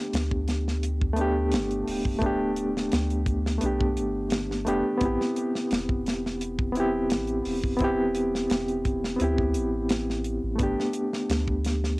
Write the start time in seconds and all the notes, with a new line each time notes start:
Already playing: A3 B3 D4 G4
0.13 D2, snare, closed hi-hat
0.31 kick
0.48 snare, closed hi-hat
0.68 snare
0.83 closed hi-hat
1.01 kick
1.13 A3 B3, closed hi-hat
1.19 D4 G4
1.52 G1, snare, closed hi-hat
1.71 closed hi-hat
1.88 D1, open hi-hat
2.05 kick
2.19 A3 B3, kick, closed hi-hat
2.24 D4 G4
2.56 closed hi-hat
2.77 snare
2.92 D2, snare, closed hi-hat
3.10 closed hi-hat
3.26 kick, closed hi-hat
3.46 snare
3.58 B1 A3 B3, closed hi-hat
3.63 D4 G4
3.81 kick
3.97 G1, closed hi-hat
4.30 snare, closed hi-hat
4.51 snare
4.65 F1 A3 B3 D4 G4, closed hi-hat
4.98 A1 B3 C4, kick, closed hi-hat
5.03 E4 G4
5.21 snare
5.36 closed hi-hat
5.55 snare
5.71 E1, snare, closed hi-hat
5.89 kick
6.06 snare, closed hi-hat
6.26 snare
6.41 closed hi-hat
6.59 kick
6.72 B3 C4, closed hi-hat
6.77 E4 G4
7.10 A1, snare, closed hi-hat
7.27 closed hi-hat
7.45 E1, open hi-hat
7.64 kick
7.77 B3 C4, kick, closed hi-hat
7.82 E4 G4
8.15 closed hi-hat
8.35 snare
8.50 E1, snare, closed hi-hat
8.68 closed hi-hat
8.85 kick, closed hi-hat
9.04 snare
9.16 D2 B3 C4, closed hi-hat
9.22 E4 G4
9.38 kick
9.54 A1, closed hi-hat
9.89 snare, closed hi-hat
10.10 snare
10.24 closed hi-hat
10.43 A1
10.56 G1 A3 B3, closed hi-hat
10.60 D4 G4, kick
10.80 snare
10.93 closed hi-hat
11.13 snare
11.29 D2, snare, closed hi-hat
11.48 kick
11.64 snare, closed hi-hat
11.84 snare